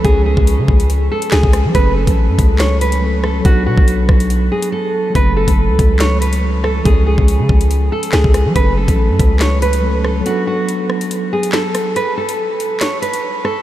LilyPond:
<<
  \new Staff \with { instrumentName = "Nylon-string guitar" } { \time 4/4 \key fis \minor \tempo 4 = 141 gis'8 gis'2 a'8 gis'4 | b'8 a'4. cis''8 b'4 a'8 | fis'8 fis'2 gis'8 a'4 | b'8 a'4. cis''8 b'4 a'8 |
gis'8 gis'2 a'8 gis'4 | b'8 a'4. cis''8 b'4 a'8 | fis'8 fis'2 gis'8 a'4 | b'8 a'4. cis''8 b'4 a'8 | }
  \new Staff \with { instrumentName = "Tine electric piano" } { \time 4/4 \key fis \minor <eis gis cis' gis'>1 | <fis a cis' a'>2. <fis a cis' a'>4 | <fis b d' a'>1 | <fis a cis' a'>1 |
<eis gis cis' gis'>1 | <fis a cis' a'>2. <fis a cis' a'>4 | <fis b d' a'>1 | r1 | }
  \new Staff \with { instrumentName = "808-style bass" } { \clef bass \time 4/4 \key fis \minor cis,8. cis,8 cis16 cis,4 r8 cis,16 cis,8 eis16 | fis,,8. a,,8 fis,16 cis,2~ cis,8 | b,,8 b,16 b,,8. b,,4 r4. | fis,,8. fis,,8 cis,16 cis,2~ cis,8 |
cis,8. cis,8 cis16 cis,4 r8 cis,16 cis,8 eis16 | fis,,8. a,,8 fis,16 cis,2~ cis,8 | r1 | r1 | }
  \new DrumStaff \with { instrumentName = "Drums" } \drummode { \time 4/4 <hh bd>8. bd16 hh8 bd16 hh16 hh8. hh16 <hc sn>16 bd16 <hh ss>8 | <hh bd>8. <hh bd>16 r8 <hh bd>8 <hc hh sn>8 hh16 hh16 r8 ss8 | <hh bd>8. bd16 hh8 <bd ss>16 hh16 hh8. hh16 r4 | <hh bd>8. <hh bd>16 r8 <hh bd>8 <hc hh sn>8 hh16 hh16 r8 ss8 |
<hh bd>8. bd16 hh8 bd16 hh16 hh8. hh16 <hc sn>16 bd16 <hh ss>8 | <hh bd>8. <hh bd>16 r8 <hh bd>8 <hc hh sn>8 hh16 hh16 r8 ss8 | hh4 hh8 ss16 hh16 hh8. hh16 <hc sn>8 <hh ss>8 | hh8. hh16 r8 hh8 <hc hh sn>8 hh16 hh16 r8 ss8 | }
>>